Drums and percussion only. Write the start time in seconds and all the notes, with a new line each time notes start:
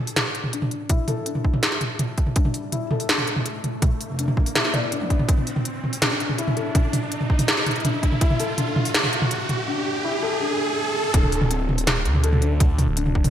0.07 open hi-hat
0.16 snare, closed hi-hat, mid tom
0.35 closed hi-hat
0.44 mid tom
0.53 closed hi-hat
0.62 mid tom
0.71 closed hi-hat
0.89 kick, closed hi-hat, mid tom
1.08 mid tom, open hi-hat
1.26 closed hi-hat
1.35 mid tom
1.45 kick
1.54 mid tom
1.63 snare, closed hi-hat
1.72 snare
1.81 closed hi-hat, mid tom
1.99 closed hi-hat, mid tom
2.18 kick, closed hi-hat
2.27 mid tom
2.36 kick, closed hi-hat
2.45 mid tom
2.54 open hi-hat
2.72 closed hi-hat, mid tom
2.91 mid tom
3.00 open hi-hat
3.09 snare, closed hi-hat
3.18 mid tom
3.27 closed hi-hat
3.36 mid tom
3.46 closed hi-hat
3.64 closed hi-hat, mid tom
3.82 kick, closed hi-hat, mid tom
4.01 open hi-hat
4.10 mid tom
4.12 mid tom
4.14 mid tom
4.17 closed hi-hat, mid tom
4.19 mid tom
4.21 mid tom
4.23 mid tom
4.26 mid tom
4.28 mid tom
4.37 kick
4.46 open hi-hat
4.55 snare, closed hi-hat, mid tom
4.65 snare
4.74 closed hi-hat, mid tom
4.92 closed hi-hat
5.01 mid tom
5.10 kick, closed hi-hat
5.19 mid tom
5.29 kick, closed hi-hat
5.38 mid tom
5.47 open hi-hat
5.56 mid tom
5.65 closed hi-hat
5.84 mid tom
5.93 open hi-hat
6.02 snare, closed hi-hat, mid tom
6.20 closed hi-hat
6.29 mid tom
6.38 closed hi-hat
6.48 mid tom
6.57 closed hi-hat
6.75 kick, closed hi-hat, mid tom
6.93 mid tom, open hi-hat
7.12 closed hi-hat
7.21 mid tom
7.30 kick
7.39 mid tom, open hi-hat
7.48 snare, closed hi-hat
7.57 snare
7.66 closed hi-hat, mid tom
7.71 closed hi-hat
7.76 closed hi-hat
7.80 closed hi-hat
7.85 closed hi-hat, mid tom
8.03 kick, closed hi-hat
8.12 mid tom
8.21 kick, closed hi-hat
8.30 mid tom
8.40 open hi-hat
8.58 closed hi-hat, mid tom
8.76 mid tom
8.85 open hi-hat
8.94 snare, closed hi-hat
9.04 mid tom
9.13 closed hi-hat
9.22 mid tom
9.31 closed hi-hat
9.49 closed hi-hat, mid tom
11.14 kick, closed hi-hat
11.23 mid tom
11.32 open hi-hat
11.41 mid tom
11.51 closed hi-hat
11.69 mid tom
11.78 open hi-hat
11.87 snare, closed hi-hat, mid tom
12.05 closed hi-hat
12.15 mid tom
12.24 closed hi-hat
12.33 mid tom
12.42 closed hi-hat
12.60 kick, closed hi-hat, mid tom
12.79 mid tom, open hi-hat
12.97 closed hi-hat
13.06 mid tom
13.15 kick
13.24 mid tom, open hi-hat